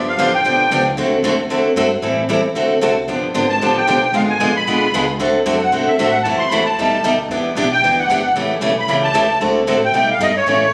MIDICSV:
0, 0, Header, 1, 5, 480
1, 0, Start_track
1, 0, Tempo, 263505
1, 1772, Time_signature, 4, 2, 24, 8
1, 19553, End_track
2, 0, Start_track
2, 0, Title_t, "Accordion"
2, 0, Program_c, 0, 21
2, 150, Note_on_c, 0, 77, 86
2, 584, Note_off_c, 0, 77, 0
2, 628, Note_on_c, 0, 79, 89
2, 1510, Note_off_c, 0, 79, 0
2, 6362, Note_on_c, 0, 81, 78
2, 6859, Note_off_c, 0, 81, 0
2, 6877, Note_on_c, 0, 79, 83
2, 7505, Note_off_c, 0, 79, 0
2, 7570, Note_on_c, 0, 77, 80
2, 7685, Note_off_c, 0, 77, 0
2, 7831, Note_on_c, 0, 80, 87
2, 8267, Note_off_c, 0, 80, 0
2, 8318, Note_on_c, 0, 83, 79
2, 9197, Note_off_c, 0, 83, 0
2, 10243, Note_on_c, 0, 78, 72
2, 10705, Note_on_c, 0, 76, 71
2, 10719, Note_off_c, 0, 78, 0
2, 10870, Note_off_c, 0, 76, 0
2, 10897, Note_on_c, 0, 76, 77
2, 11137, Note_on_c, 0, 78, 89
2, 11176, Note_off_c, 0, 76, 0
2, 11346, Note_off_c, 0, 78, 0
2, 11346, Note_on_c, 0, 81, 89
2, 11627, Note_on_c, 0, 84, 91
2, 11640, Note_off_c, 0, 81, 0
2, 11815, Note_on_c, 0, 83, 85
2, 11853, Note_off_c, 0, 84, 0
2, 12086, Note_off_c, 0, 83, 0
2, 12123, Note_on_c, 0, 81, 82
2, 13017, Note_off_c, 0, 81, 0
2, 14071, Note_on_c, 0, 79, 96
2, 14552, Note_off_c, 0, 79, 0
2, 14559, Note_on_c, 0, 78, 82
2, 15184, Note_off_c, 0, 78, 0
2, 16008, Note_on_c, 0, 83, 85
2, 16182, Note_off_c, 0, 83, 0
2, 16210, Note_on_c, 0, 83, 89
2, 16323, Note_off_c, 0, 83, 0
2, 16470, Note_on_c, 0, 81, 87
2, 17099, Note_off_c, 0, 81, 0
2, 17941, Note_on_c, 0, 79, 93
2, 18105, Note_off_c, 0, 79, 0
2, 18132, Note_on_c, 0, 79, 94
2, 18390, Note_off_c, 0, 79, 0
2, 18423, Note_on_c, 0, 77, 81
2, 18607, Note_off_c, 0, 77, 0
2, 18617, Note_on_c, 0, 75, 88
2, 18847, Note_off_c, 0, 75, 0
2, 18887, Note_on_c, 0, 73, 87
2, 19553, Note_off_c, 0, 73, 0
2, 19553, End_track
3, 0, Start_track
3, 0, Title_t, "Steel-string acoustic guitar"
3, 0, Program_c, 1, 25
3, 0, Note_on_c, 1, 50, 68
3, 0, Note_on_c, 1, 53, 62
3, 0, Note_on_c, 1, 59, 68
3, 0, Note_on_c, 1, 62, 63
3, 0, Note_on_c, 1, 67, 64
3, 185, Note_off_c, 1, 50, 0
3, 187, Note_off_c, 1, 53, 0
3, 191, Note_off_c, 1, 62, 0
3, 194, Note_off_c, 1, 59, 0
3, 198, Note_off_c, 1, 67, 0
3, 337, Note_on_c, 1, 50, 85
3, 341, Note_on_c, 1, 53, 83
3, 350, Note_on_c, 1, 59, 88
3, 357, Note_on_c, 1, 62, 79
3, 361, Note_on_c, 1, 67, 94
3, 519, Note_off_c, 1, 50, 0
3, 521, Note_off_c, 1, 53, 0
3, 526, Note_off_c, 1, 59, 0
3, 529, Note_off_c, 1, 62, 0
3, 531, Note_off_c, 1, 67, 0
3, 810, Note_on_c, 1, 50, 62
3, 820, Note_on_c, 1, 53, 58
3, 826, Note_on_c, 1, 59, 66
3, 831, Note_on_c, 1, 62, 64
3, 835, Note_on_c, 1, 67, 66
3, 1143, Note_off_c, 1, 50, 0
3, 1148, Note_off_c, 1, 53, 0
3, 1151, Note_off_c, 1, 59, 0
3, 1153, Note_off_c, 1, 62, 0
3, 1155, Note_off_c, 1, 67, 0
3, 1299, Note_on_c, 1, 50, 78
3, 1304, Note_on_c, 1, 53, 78
3, 1311, Note_on_c, 1, 59, 86
3, 1317, Note_on_c, 1, 62, 85
3, 1322, Note_on_c, 1, 67, 93
3, 1481, Note_off_c, 1, 50, 0
3, 1483, Note_off_c, 1, 53, 0
3, 1487, Note_off_c, 1, 59, 0
3, 1490, Note_off_c, 1, 62, 0
3, 1492, Note_off_c, 1, 67, 0
3, 1768, Note_on_c, 1, 50, 64
3, 1781, Note_on_c, 1, 57, 58
3, 1785, Note_on_c, 1, 60, 76
3, 1797, Note_on_c, 1, 66, 62
3, 1798, Note_on_c, 1, 69, 65
3, 2102, Note_off_c, 1, 50, 0
3, 2109, Note_off_c, 1, 57, 0
3, 2111, Note_off_c, 1, 60, 0
3, 2117, Note_off_c, 1, 66, 0
3, 2117, Note_off_c, 1, 69, 0
3, 2255, Note_on_c, 1, 50, 83
3, 2258, Note_on_c, 1, 57, 80
3, 2264, Note_on_c, 1, 60, 80
3, 2274, Note_on_c, 1, 66, 88
3, 2277, Note_on_c, 1, 69, 88
3, 2439, Note_off_c, 1, 50, 0
3, 2441, Note_off_c, 1, 57, 0
3, 2444, Note_off_c, 1, 60, 0
3, 2449, Note_off_c, 1, 66, 0
3, 2450, Note_off_c, 1, 69, 0
3, 2734, Note_on_c, 1, 50, 56
3, 2738, Note_on_c, 1, 57, 72
3, 2743, Note_on_c, 1, 60, 68
3, 2754, Note_on_c, 1, 66, 60
3, 2757, Note_on_c, 1, 69, 72
3, 3066, Note_off_c, 1, 50, 0
3, 3068, Note_off_c, 1, 57, 0
3, 3070, Note_off_c, 1, 60, 0
3, 3076, Note_off_c, 1, 66, 0
3, 3077, Note_off_c, 1, 69, 0
3, 3209, Note_on_c, 1, 50, 75
3, 3222, Note_on_c, 1, 57, 85
3, 3225, Note_on_c, 1, 60, 93
3, 3230, Note_on_c, 1, 66, 98
3, 3238, Note_on_c, 1, 69, 93
3, 3397, Note_off_c, 1, 50, 0
3, 3403, Note_off_c, 1, 57, 0
3, 3405, Note_off_c, 1, 60, 0
3, 3407, Note_off_c, 1, 66, 0
3, 3411, Note_off_c, 1, 69, 0
3, 3683, Note_on_c, 1, 52, 66
3, 3690, Note_on_c, 1, 55, 62
3, 3700, Note_on_c, 1, 64, 60
3, 3701, Note_on_c, 1, 60, 60
3, 3706, Note_on_c, 1, 69, 69
3, 4021, Note_off_c, 1, 52, 0
3, 4024, Note_off_c, 1, 55, 0
3, 4030, Note_off_c, 1, 60, 0
3, 4030, Note_off_c, 1, 64, 0
3, 4032, Note_off_c, 1, 69, 0
3, 4167, Note_on_c, 1, 52, 77
3, 4180, Note_on_c, 1, 55, 77
3, 4185, Note_on_c, 1, 60, 88
3, 4194, Note_on_c, 1, 64, 79
3, 4195, Note_on_c, 1, 69, 84
3, 4356, Note_off_c, 1, 52, 0
3, 4363, Note_off_c, 1, 55, 0
3, 4365, Note_off_c, 1, 60, 0
3, 4370, Note_off_c, 1, 64, 0
3, 4370, Note_off_c, 1, 69, 0
3, 4648, Note_on_c, 1, 50, 58
3, 4658, Note_on_c, 1, 57, 66
3, 4667, Note_on_c, 1, 60, 70
3, 4671, Note_on_c, 1, 66, 65
3, 4678, Note_on_c, 1, 69, 72
3, 4984, Note_off_c, 1, 50, 0
3, 4989, Note_off_c, 1, 57, 0
3, 4993, Note_off_c, 1, 60, 0
3, 4995, Note_off_c, 1, 66, 0
3, 4999, Note_off_c, 1, 69, 0
3, 5125, Note_on_c, 1, 50, 81
3, 5138, Note_on_c, 1, 57, 82
3, 5146, Note_on_c, 1, 60, 86
3, 5149, Note_on_c, 1, 66, 98
3, 5152, Note_on_c, 1, 69, 92
3, 5316, Note_off_c, 1, 50, 0
3, 5322, Note_off_c, 1, 57, 0
3, 5326, Note_off_c, 1, 60, 0
3, 5328, Note_off_c, 1, 66, 0
3, 5329, Note_off_c, 1, 69, 0
3, 5608, Note_on_c, 1, 50, 58
3, 5614, Note_on_c, 1, 53, 61
3, 5625, Note_on_c, 1, 59, 66
3, 5629, Note_on_c, 1, 62, 63
3, 5639, Note_on_c, 1, 67, 68
3, 5944, Note_off_c, 1, 50, 0
3, 5947, Note_off_c, 1, 53, 0
3, 5952, Note_off_c, 1, 59, 0
3, 5954, Note_off_c, 1, 62, 0
3, 5959, Note_off_c, 1, 67, 0
3, 6090, Note_on_c, 1, 50, 75
3, 6096, Note_on_c, 1, 53, 84
3, 6103, Note_on_c, 1, 59, 87
3, 6109, Note_on_c, 1, 62, 95
3, 6112, Note_on_c, 1, 67, 77
3, 6279, Note_off_c, 1, 50, 0
3, 6282, Note_off_c, 1, 53, 0
3, 6285, Note_off_c, 1, 59, 0
3, 6288, Note_off_c, 1, 62, 0
3, 6289, Note_off_c, 1, 67, 0
3, 6586, Note_on_c, 1, 50, 59
3, 6596, Note_on_c, 1, 53, 67
3, 6596, Note_on_c, 1, 59, 69
3, 6603, Note_on_c, 1, 62, 70
3, 6612, Note_on_c, 1, 67, 73
3, 6914, Note_off_c, 1, 50, 0
3, 6918, Note_off_c, 1, 53, 0
3, 6918, Note_off_c, 1, 59, 0
3, 6922, Note_off_c, 1, 62, 0
3, 6926, Note_off_c, 1, 67, 0
3, 7058, Note_on_c, 1, 50, 81
3, 7067, Note_on_c, 1, 53, 84
3, 7067, Note_on_c, 1, 59, 85
3, 7076, Note_on_c, 1, 62, 88
3, 7077, Note_on_c, 1, 67, 87
3, 7243, Note_off_c, 1, 50, 0
3, 7247, Note_off_c, 1, 53, 0
3, 7247, Note_off_c, 1, 59, 0
3, 7252, Note_off_c, 1, 62, 0
3, 7252, Note_off_c, 1, 67, 0
3, 7532, Note_on_c, 1, 50, 66
3, 7542, Note_on_c, 1, 56, 66
3, 7545, Note_on_c, 1, 59, 66
3, 7554, Note_on_c, 1, 65, 68
3, 7557, Note_on_c, 1, 68, 68
3, 7866, Note_off_c, 1, 50, 0
3, 7871, Note_off_c, 1, 56, 0
3, 7873, Note_off_c, 1, 59, 0
3, 7877, Note_off_c, 1, 65, 0
3, 7879, Note_off_c, 1, 68, 0
3, 8013, Note_on_c, 1, 50, 78
3, 8021, Note_on_c, 1, 56, 85
3, 8022, Note_on_c, 1, 59, 90
3, 8033, Note_on_c, 1, 65, 87
3, 8036, Note_on_c, 1, 68, 86
3, 8200, Note_off_c, 1, 50, 0
3, 8204, Note_off_c, 1, 56, 0
3, 8205, Note_off_c, 1, 59, 0
3, 8210, Note_off_c, 1, 65, 0
3, 8212, Note_off_c, 1, 68, 0
3, 8511, Note_on_c, 1, 50, 70
3, 8516, Note_on_c, 1, 56, 61
3, 8519, Note_on_c, 1, 59, 63
3, 8531, Note_on_c, 1, 65, 69
3, 8532, Note_on_c, 1, 68, 64
3, 8836, Note_off_c, 1, 50, 0
3, 8839, Note_off_c, 1, 56, 0
3, 8840, Note_off_c, 1, 59, 0
3, 8846, Note_off_c, 1, 65, 0
3, 8846, Note_off_c, 1, 68, 0
3, 8994, Note_on_c, 1, 50, 78
3, 9002, Note_on_c, 1, 56, 77
3, 9010, Note_on_c, 1, 59, 82
3, 9012, Note_on_c, 1, 65, 91
3, 9012, Note_on_c, 1, 68, 89
3, 9171, Note_off_c, 1, 50, 0
3, 9175, Note_off_c, 1, 56, 0
3, 9179, Note_off_c, 1, 59, 0
3, 9180, Note_off_c, 1, 65, 0
3, 9180, Note_off_c, 1, 68, 0
3, 9463, Note_on_c, 1, 50, 72
3, 9472, Note_on_c, 1, 57, 61
3, 9480, Note_on_c, 1, 60, 63
3, 9481, Note_on_c, 1, 66, 75
3, 9491, Note_on_c, 1, 69, 70
3, 9792, Note_off_c, 1, 50, 0
3, 9796, Note_off_c, 1, 57, 0
3, 9800, Note_off_c, 1, 60, 0
3, 9801, Note_off_c, 1, 66, 0
3, 9806, Note_off_c, 1, 69, 0
3, 9941, Note_on_c, 1, 50, 87
3, 9950, Note_on_c, 1, 57, 76
3, 9950, Note_on_c, 1, 60, 78
3, 9956, Note_on_c, 1, 66, 82
3, 9959, Note_on_c, 1, 69, 91
3, 10124, Note_off_c, 1, 50, 0
3, 10129, Note_off_c, 1, 57, 0
3, 10129, Note_off_c, 1, 60, 0
3, 10132, Note_off_c, 1, 66, 0
3, 10133, Note_off_c, 1, 69, 0
3, 10420, Note_on_c, 1, 50, 68
3, 10427, Note_on_c, 1, 57, 63
3, 10434, Note_on_c, 1, 60, 63
3, 10438, Note_on_c, 1, 66, 67
3, 10452, Note_on_c, 1, 69, 61
3, 10750, Note_off_c, 1, 50, 0
3, 10754, Note_off_c, 1, 57, 0
3, 10757, Note_off_c, 1, 60, 0
3, 10759, Note_off_c, 1, 66, 0
3, 10766, Note_off_c, 1, 69, 0
3, 10912, Note_on_c, 1, 50, 89
3, 10920, Note_on_c, 1, 57, 81
3, 10928, Note_on_c, 1, 60, 86
3, 10928, Note_on_c, 1, 66, 90
3, 10939, Note_on_c, 1, 69, 91
3, 11090, Note_off_c, 1, 50, 0
3, 11094, Note_off_c, 1, 57, 0
3, 11097, Note_off_c, 1, 60, 0
3, 11098, Note_off_c, 1, 66, 0
3, 11103, Note_off_c, 1, 69, 0
3, 11389, Note_on_c, 1, 48, 64
3, 11392, Note_on_c, 1, 52, 66
3, 11403, Note_on_c, 1, 57, 66
3, 11408, Note_on_c, 1, 64, 65
3, 11408, Note_on_c, 1, 66, 75
3, 11714, Note_off_c, 1, 48, 0
3, 11716, Note_off_c, 1, 52, 0
3, 11722, Note_off_c, 1, 57, 0
3, 11724, Note_off_c, 1, 64, 0
3, 11724, Note_off_c, 1, 66, 0
3, 11864, Note_on_c, 1, 48, 76
3, 11875, Note_on_c, 1, 52, 82
3, 11880, Note_on_c, 1, 64, 85
3, 11884, Note_on_c, 1, 57, 79
3, 11890, Note_on_c, 1, 66, 90
3, 12045, Note_off_c, 1, 48, 0
3, 12051, Note_off_c, 1, 52, 0
3, 12053, Note_off_c, 1, 64, 0
3, 12055, Note_off_c, 1, 57, 0
3, 12058, Note_off_c, 1, 66, 0
3, 12361, Note_on_c, 1, 47, 57
3, 12368, Note_on_c, 1, 55, 58
3, 12375, Note_on_c, 1, 57, 62
3, 12379, Note_on_c, 1, 63, 70
3, 12379, Note_on_c, 1, 67, 68
3, 12680, Note_off_c, 1, 47, 0
3, 12684, Note_off_c, 1, 55, 0
3, 12687, Note_off_c, 1, 57, 0
3, 12689, Note_off_c, 1, 63, 0
3, 12689, Note_off_c, 1, 67, 0
3, 12824, Note_on_c, 1, 47, 78
3, 12830, Note_on_c, 1, 55, 80
3, 12834, Note_on_c, 1, 57, 85
3, 12848, Note_on_c, 1, 63, 82
3, 12851, Note_on_c, 1, 67, 86
3, 13005, Note_off_c, 1, 47, 0
3, 13008, Note_off_c, 1, 55, 0
3, 13010, Note_off_c, 1, 57, 0
3, 13017, Note_off_c, 1, 63, 0
3, 13018, Note_off_c, 1, 67, 0
3, 13312, Note_on_c, 1, 52, 59
3, 13316, Note_on_c, 1, 59, 67
3, 13323, Note_on_c, 1, 62, 68
3, 13336, Note_on_c, 1, 67, 69
3, 13635, Note_off_c, 1, 52, 0
3, 13637, Note_off_c, 1, 59, 0
3, 13641, Note_off_c, 1, 62, 0
3, 13647, Note_off_c, 1, 67, 0
3, 13781, Note_on_c, 1, 52, 71
3, 13790, Note_on_c, 1, 59, 80
3, 13797, Note_on_c, 1, 62, 91
3, 13802, Note_on_c, 1, 67, 88
3, 13963, Note_off_c, 1, 52, 0
3, 13968, Note_off_c, 1, 59, 0
3, 13971, Note_off_c, 1, 62, 0
3, 13973, Note_off_c, 1, 67, 0
3, 14274, Note_on_c, 1, 52, 62
3, 14281, Note_on_c, 1, 59, 66
3, 14288, Note_on_c, 1, 62, 66
3, 14301, Note_on_c, 1, 67, 68
3, 14596, Note_off_c, 1, 52, 0
3, 14600, Note_off_c, 1, 59, 0
3, 14603, Note_off_c, 1, 62, 0
3, 14609, Note_off_c, 1, 67, 0
3, 14749, Note_on_c, 1, 52, 75
3, 14763, Note_on_c, 1, 59, 90
3, 14772, Note_on_c, 1, 62, 87
3, 14779, Note_on_c, 1, 67, 94
3, 14926, Note_off_c, 1, 52, 0
3, 14934, Note_off_c, 1, 59, 0
3, 14938, Note_off_c, 1, 62, 0
3, 14941, Note_off_c, 1, 67, 0
3, 15220, Note_on_c, 1, 49, 64
3, 15223, Note_on_c, 1, 52, 66
3, 15236, Note_on_c, 1, 57, 69
3, 15236, Note_on_c, 1, 61, 73
3, 15243, Note_on_c, 1, 67, 71
3, 15548, Note_off_c, 1, 49, 0
3, 15550, Note_off_c, 1, 52, 0
3, 15556, Note_off_c, 1, 57, 0
3, 15556, Note_off_c, 1, 61, 0
3, 15560, Note_off_c, 1, 67, 0
3, 15686, Note_on_c, 1, 49, 76
3, 15693, Note_on_c, 1, 52, 79
3, 15701, Note_on_c, 1, 57, 79
3, 15705, Note_on_c, 1, 61, 77
3, 15708, Note_on_c, 1, 67, 86
3, 15875, Note_off_c, 1, 49, 0
3, 15878, Note_off_c, 1, 52, 0
3, 15882, Note_off_c, 1, 57, 0
3, 15884, Note_off_c, 1, 61, 0
3, 15885, Note_off_c, 1, 67, 0
3, 16180, Note_on_c, 1, 49, 63
3, 16190, Note_on_c, 1, 52, 69
3, 16196, Note_on_c, 1, 57, 65
3, 16196, Note_on_c, 1, 61, 64
3, 16202, Note_on_c, 1, 67, 70
3, 16508, Note_off_c, 1, 49, 0
3, 16513, Note_off_c, 1, 52, 0
3, 16516, Note_off_c, 1, 57, 0
3, 16516, Note_off_c, 1, 61, 0
3, 16519, Note_off_c, 1, 67, 0
3, 16649, Note_on_c, 1, 49, 78
3, 16658, Note_on_c, 1, 52, 84
3, 16666, Note_on_c, 1, 61, 86
3, 16667, Note_on_c, 1, 57, 84
3, 16670, Note_on_c, 1, 67, 101
3, 16836, Note_off_c, 1, 49, 0
3, 16840, Note_off_c, 1, 52, 0
3, 16844, Note_off_c, 1, 61, 0
3, 16845, Note_off_c, 1, 57, 0
3, 16846, Note_off_c, 1, 67, 0
3, 17137, Note_on_c, 1, 50, 62
3, 17141, Note_on_c, 1, 57, 61
3, 17147, Note_on_c, 1, 60, 65
3, 17158, Note_on_c, 1, 66, 64
3, 17159, Note_on_c, 1, 69, 65
3, 17466, Note_off_c, 1, 50, 0
3, 17468, Note_off_c, 1, 57, 0
3, 17471, Note_off_c, 1, 60, 0
3, 17477, Note_off_c, 1, 66, 0
3, 17477, Note_off_c, 1, 69, 0
3, 17619, Note_on_c, 1, 50, 79
3, 17623, Note_on_c, 1, 57, 76
3, 17630, Note_on_c, 1, 60, 87
3, 17638, Note_on_c, 1, 66, 89
3, 17639, Note_on_c, 1, 69, 85
3, 17800, Note_off_c, 1, 50, 0
3, 17802, Note_off_c, 1, 57, 0
3, 17806, Note_off_c, 1, 60, 0
3, 17810, Note_off_c, 1, 66, 0
3, 17810, Note_off_c, 1, 69, 0
3, 18098, Note_on_c, 1, 47, 62
3, 18100, Note_on_c, 1, 55, 64
3, 18108, Note_on_c, 1, 57, 72
3, 18113, Note_on_c, 1, 63, 74
3, 18116, Note_on_c, 1, 67, 65
3, 18426, Note_off_c, 1, 47, 0
3, 18428, Note_off_c, 1, 55, 0
3, 18431, Note_off_c, 1, 57, 0
3, 18434, Note_off_c, 1, 63, 0
3, 18435, Note_off_c, 1, 67, 0
3, 18588, Note_on_c, 1, 47, 74
3, 18593, Note_on_c, 1, 55, 90
3, 18597, Note_on_c, 1, 57, 83
3, 18601, Note_on_c, 1, 63, 90
3, 18610, Note_on_c, 1, 67, 96
3, 18765, Note_off_c, 1, 47, 0
3, 18767, Note_off_c, 1, 55, 0
3, 18769, Note_off_c, 1, 57, 0
3, 18771, Note_off_c, 1, 63, 0
3, 18776, Note_off_c, 1, 67, 0
3, 19060, Note_on_c, 1, 49, 60
3, 19067, Note_on_c, 1, 52, 58
3, 19081, Note_on_c, 1, 57, 64
3, 19082, Note_on_c, 1, 61, 74
3, 19089, Note_on_c, 1, 67, 69
3, 19387, Note_off_c, 1, 49, 0
3, 19391, Note_off_c, 1, 52, 0
3, 19398, Note_off_c, 1, 57, 0
3, 19398, Note_off_c, 1, 61, 0
3, 19402, Note_off_c, 1, 67, 0
3, 19553, End_track
4, 0, Start_track
4, 0, Title_t, "Upright bass"
4, 0, Program_c, 2, 32
4, 0, Note_on_c, 2, 31, 89
4, 305, Note_off_c, 2, 31, 0
4, 316, Note_on_c, 2, 33, 100
4, 789, Note_off_c, 2, 33, 0
4, 812, Note_on_c, 2, 35, 72
4, 1274, Note_off_c, 2, 35, 0
4, 1285, Note_on_c, 2, 37, 87
4, 1755, Note_off_c, 2, 37, 0
4, 1763, Note_on_c, 2, 38, 91
4, 2222, Note_off_c, 2, 38, 0
4, 2233, Note_on_c, 2, 40, 95
4, 2709, Note_off_c, 2, 40, 0
4, 2720, Note_on_c, 2, 42, 69
4, 3193, Note_off_c, 2, 42, 0
4, 3202, Note_on_c, 2, 43, 82
4, 3663, Note_off_c, 2, 43, 0
4, 3674, Note_on_c, 2, 45, 88
4, 4150, Note_off_c, 2, 45, 0
4, 4162, Note_on_c, 2, 40, 91
4, 4635, Note_off_c, 2, 40, 0
4, 4642, Note_on_c, 2, 38, 80
4, 5115, Note_off_c, 2, 38, 0
4, 5129, Note_on_c, 2, 36, 88
4, 5599, Note_off_c, 2, 36, 0
4, 5609, Note_on_c, 2, 31, 82
4, 6078, Note_off_c, 2, 31, 0
4, 6096, Note_on_c, 2, 32, 92
4, 6554, Note_off_c, 2, 32, 0
4, 6565, Note_on_c, 2, 33, 76
4, 7032, Note_off_c, 2, 33, 0
4, 7042, Note_on_c, 2, 35, 88
4, 7498, Note_off_c, 2, 35, 0
4, 7509, Note_on_c, 2, 32, 90
4, 7984, Note_off_c, 2, 32, 0
4, 7995, Note_on_c, 2, 34, 86
4, 8462, Note_off_c, 2, 34, 0
4, 8473, Note_on_c, 2, 35, 73
4, 8951, Note_off_c, 2, 35, 0
4, 8958, Note_on_c, 2, 37, 86
4, 9434, Note_off_c, 2, 37, 0
4, 9455, Note_on_c, 2, 38, 89
4, 9922, Note_off_c, 2, 38, 0
4, 9936, Note_on_c, 2, 42, 90
4, 10388, Note_off_c, 2, 42, 0
4, 10399, Note_on_c, 2, 47, 72
4, 10659, Note_off_c, 2, 47, 0
4, 10897, Note_on_c, 2, 45, 89
4, 11362, Note_off_c, 2, 45, 0
4, 11384, Note_on_c, 2, 42, 92
4, 11627, Note_off_c, 2, 42, 0
4, 11855, Note_on_c, 2, 40, 85
4, 12314, Note_off_c, 2, 40, 0
4, 12325, Note_on_c, 2, 39, 75
4, 12783, Note_off_c, 2, 39, 0
4, 12794, Note_on_c, 2, 38, 84
4, 13257, Note_off_c, 2, 38, 0
4, 13268, Note_on_c, 2, 40, 86
4, 13532, Note_off_c, 2, 40, 0
4, 13757, Note_on_c, 2, 35, 98
4, 14227, Note_off_c, 2, 35, 0
4, 14238, Note_on_c, 2, 38, 79
4, 14701, Note_off_c, 2, 38, 0
4, 14712, Note_on_c, 2, 31, 82
4, 15183, Note_off_c, 2, 31, 0
4, 15194, Note_on_c, 2, 33, 86
4, 15454, Note_off_c, 2, 33, 0
4, 15671, Note_on_c, 2, 35, 93
4, 16147, Note_off_c, 2, 35, 0
4, 16155, Note_on_c, 2, 37, 78
4, 16629, Note_off_c, 2, 37, 0
4, 16642, Note_on_c, 2, 39, 79
4, 17113, Note_off_c, 2, 39, 0
4, 17129, Note_on_c, 2, 38, 87
4, 17596, Note_off_c, 2, 38, 0
4, 17604, Note_on_c, 2, 45, 90
4, 18061, Note_off_c, 2, 45, 0
4, 18072, Note_on_c, 2, 47, 79
4, 18541, Note_off_c, 2, 47, 0
4, 18552, Note_on_c, 2, 43, 92
4, 19027, Note_off_c, 2, 43, 0
4, 19056, Note_on_c, 2, 45, 91
4, 19513, Note_off_c, 2, 45, 0
4, 19553, End_track
5, 0, Start_track
5, 0, Title_t, "Muted upright bass strokes"
5, 10693, Note_on_c, 9, 29, 35
5, 10875, Note_off_c, 9, 29, 0
5, 11638, Note_on_c, 9, 29, 37
5, 11820, Note_off_c, 9, 29, 0
5, 13542, Note_on_c, 9, 29, 35
5, 13725, Note_off_c, 9, 29, 0
5, 15482, Note_on_c, 9, 29, 35
5, 15664, Note_off_c, 9, 29, 0
5, 19553, End_track
0, 0, End_of_file